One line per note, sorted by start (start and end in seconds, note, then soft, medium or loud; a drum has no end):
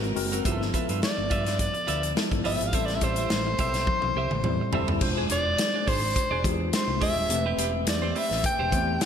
0.00 0.11 G#1 medium
0.00 0.12 G#3 medium
0.00 0.12 C4 medium
0.00 0.13 F#4 medium
0.00 0.13 A#4 medium
0.00 muted clean electric guitar stroke soft
0.00 closed hi-hat soft
0.15 0.40 F#1 medium
0.15 0.41 G#3 medium
0.15 0.41 C4 medium
0.15 0.41 F#4 medium
0.15 0.41 A#4 medium
0.15 muted clean electric guitar stroke soft
0.15 open hi-hat medium
0.32 0.44 C4 medium
0.32 0.43 F#4 medium
0.32 0.43 A#4 medium
0.32 closed hi-hat soft
0.44 0.68 G1 loud
0.44 1.43 F3 medium
0.44 1.43 B3 medium
0.44 1.43 E4 medium
0.44 0.61 F4 medium
0.44 0.52 G4 medium
0.44 0.61 B4 medium
0.44 0.62 E5 medium
0.44 kick loud
0.44 closed hi-hat medium
0.52 1.47 A4 medium
0.62 snare soft
0.74 0.86 F4 medium
0.74 0.87 B4 medium
0.74 0.87 E5 medium
0.74 kick medium
0.74 closed hi-hat medium
0.89 1.00 G2 medium
0.89 1.01 F4 medium
0.89 1.00 B4 medium
0.89 1.00 E5 medium
0.89 closed hi-hat medium
1.02 1.56 D5 medium
1.02 muted clean electric guitar stroke soft
1.02 snare loud
1.17 1.28 G1 medium
1.17 muted clean electric guitar stroke soft
1.30 1.67 G2 loud
1.30 1.45 F4 medium
1.30 1.45 B4 medium
1.30 1.44 E5 medium
1.30 kick medium
1.30 closed hi-hat medium
1.45 1.57 F4 soft
1.45 1.57 B4 soft
1.45 1.56 E5 soft
1.45 snare soft
1.45 closed hi-hat medium
1.59 2.13 D5 loud
1.59 kick medium
1.59 closed hi-hat medium
1.74 muted clean electric guitar stroke soft
1.74 closed hi-hat soft
1.87 2.11 D2 medium
1.87 2.04 F4 medium
1.87 2.03 B4 medium
1.87 2.02 E5 medium
1.87 closed hi-hat medium
2.03 muted clean electric guitar stroke soft
2.03 closed hi-hat medium
2.16 2.41 F3 medium
2.16 2.41 B3 medium
2.16 2.41 E4 medium
2.16 2.41 A4 medium
2.16 snare loud
2.32 2.42 G1 medium
2.32 muted clean electric guitar stroke soft
2.32 kick medium
2.32 closed hi-hat soft
2.44 2.58 G1 medium
2.44 2.70 F3 medium
2.44 2.70 B3 medium
2.44 2.70 E4 medium
2.44 2.61 F4 medium
2.44 2.70 G4 medium
2.44 2.61 B4 medium
2.44 2.69 E5 loud
2.44 2.59 E5 medium
2.44 open hi-hat medium
2.60 2.71 G#1 medium
2.60 muted clean electric guitar stroke soft
2.60 closed hi-hat medium
2.67 2.77 F5 medium
2.73 2.97 A1 loud
2.73 3.72 G3 medium
2.73 3.72 C4 medium
2.73 3.72 E4 medium
2.73 2.90 G4 medium
2.73 3.72 A4 medium
2.73 2.90 C5 medium
2.73 2.90 E5 medium
2.73 2.87 E5 medium
2.73 kick loud
2.73 closed hi-hat medium
2.85 2.96 D5 medium
2.85 snare soft
2.85 closed hi-hat soft
2.95 3.05 E5 medium
3.01 3.25 A1 medium
3.01 3.15 G4 medium
3.01 4.74 C5 loud
3.01 3.15 C5 medium
3.01 3.16 E5 medium
3.01 kick medium
3.01 closed hi-hat medium
3.16 3.29 G4 medium
3.16 3.29 C5 medium
3.16 3.28 E5 medium
3.16 closed hi-hat medium
3.30 3.54 A1 medium
3.30 muted clean electric guitar stroke soft
3.30 snare loud
3.47 muted clean electric guitar stroke soft
3.59 3.82 B1 medium
3.59 3.75 G4 medium
3.59 3.75 C5 medium
3.59 3.74 E5 medium
3.59 kick medium
3.59 closed hi-hat medium
3.74 3.86 G4 soft
3.74 3.86 C5 soft
3.74 3.86 E5 medium
3.74 snare soft
3.74 closed hi-hat medium
3.87 kick medium
3.87 high tom medium
4.02 4.14 B1 medium
4.02 muted clean electric guitar stroke soft
4.02 high tom soft
4.16 4.28 C2 medium
4.16 4.33 G4 medium
4.16 4.32 C5 medium
4.16 4.31 E5 medium
4.31 4.42 A1 medium
4.31 muted clean electric guitar stroke soft
4.31 mid tom medium
4.44 4.57 E2 medium
4.44 4.69 G3 medium
4.44 4.69 C4 medium
4.44 4.70 E4 medium
4.44 4.70 C5 medium
4.44 muted clean electric guitar stroke soft
4.44 mid tom medium
4.61 muted clean electric guitar stroke soft
4.73 4.85 E1 medium
4.73 4.98 G3 medium
4.73 4.98 C4 medium
4.73 4.98 E4 medium
4.73 4.90 G4 medium
4.73 4.98 A4 medium
4.73 4.89 C5 medium
4.73 4.88 E5 medium
4.73 floor tom medium
4.88 4.99 D#1 medium
4.88 muted clean electric guitar stroke soft
4.88 floor tom medium
5.01 5.25 E1 loud
5.01 6.00 G#3 medium
5.01 6.00 D4 medium
5.01 6.00 F4 medium
5.01 6.00 C5 medium
5.01 muted clean electric guitar stroke soft
5.01 kick loud
5.01 crash medium
5.17 5.29 D4 medium
5.17 5.30 G#4 medium
5.17 5.30 C5 medium
5.30 5.53 E1 medium
5.30 5.43 D4 medium
5.30 5.43 G#4 medium
5.30 5.43 C5 medium
5.30 5.90 D5 loud
5.30 closed hi-hat medium
5.46 muted clean electric guitar stroke soft
5.58 muted clean electric guitar stroke soft
5.58 snare loud
5.58 closed hi-hat loud
5.74 5.86 D4 soft
5.74 5.85 G#4 medium
5.74 5.85 D5 medium
5.87 6.11 G#1 medium
5.87 6.03 D4 medium
5.87 6.02 G#4 medium
5.87 6.02 C5 loud
5.87 6.45 C5 loud
5.87 kick medium
5.87 open hi-hat medium
6.03 muted clean electric guitar stroke soft
6.16 muted clean electric guitar stroke soft
6.16 kick medium
6.16 closed hi-hat medium
6.31 6.42 E1 medium
6.31 6.43 D4 medium
6.31 6.44 G#4 medium
6.31 6.45 D5 medium
6.44 6.68 E2 loud
6.44 6.93 G#3 medium
6.44 6.94 D4 medium
6.44 6.94 F4 medium
6.44 6.52 G4 medium
6.44 muted clean electric guitar stroke soft
6.44 kick medium
6.44 closed hi-hat medium
6.51 6.97 G#4 medium
6.60 muted clean electric guitar stroke soft
6.73 7.00 C5 medium
6.73 snare loud
6.73 closed hi-hat medium
6.88 6.98 C2 medium
6.88 muted clean electric guitar stroke soft
7.01 7.16 E1 medium
7.01 7.26 G#3 medium
7.01 7.17 D4 medium
7.01 7.26 D4 medium
7.01 7.26 F4 medium
7.01 7.17 G#4 medium
7.01 7.26 C5 medium
7.01 7.17 D5 medium
7.01 7.55 E5 loud
7.01 kick medium
7.01 open hi-hat medium
7.16 7.27 D#1 medium
7.16 muted clean electric guitar stroke soft
7.29 7.53 E1 loud
7.29 8.28 A3 medium
7.29 8.28 C4 medium
7.29 8.28 G4 medium
7.29 7.37 A4 medium
7.29 muted clean electric guitar stroke soft
7.29 closed hi-hat medium
7.37 8.32 B4 medium
7.46 7.57 C4 medium
7.46 7.58 G4 medium
7.46 7.58 B4 medium
7.58 7.81 E1 medium
7.58 7.71 C4 medium
7.58 7.71 G4 medium
7.58 7.72 B4 medium
7.58 closed hi-hat medium
7.74 muted clean electric guitar stroke soft
7.87 8.10 E2 loud
7.87 8.20 D5 medium
7.87 muted clean electric guitar stroke soft
7.87 snare loud
7.87 closed hi-hat loud
8.02 8.14 C4 medium
8.02 8.13 G4 medium
8.02 8.13 C5 medium
8.15 8.31 C4 medium
8.15 8.30 G4 medium
8.15 8.29 B4 medium
8.15 8.45 E5 medium
8.15 open hi-hat medium
8.31 8.42 A1 loud
8.31 muted clean electric guitar stroke soft
8.31 snare soft
8.43 9.05 G5 loud
8.43 muted clean electric guitar stroke soft
8.43 kick medium
8.43 closed hi-hat medium
8.59 8.70 E1 medium
8.59 8.72 C4 medium
8.59 8.72 G4 medium
8.59 8.73 C5 medium
8.71 8.96 E2 loud
8.71 9.05 A3 medium
8.71 9.05 C4 medium
8.71 9.05 G4 medium
8.71 9.05 C5 medium
8.71 muted clean electric guitar stroke soft
8.71 kick medium
8.71 closed hi-hat medium
8.88 muted clean electric guitar stroke soft
9.01 snare loud
9.01 closed hi-hat medium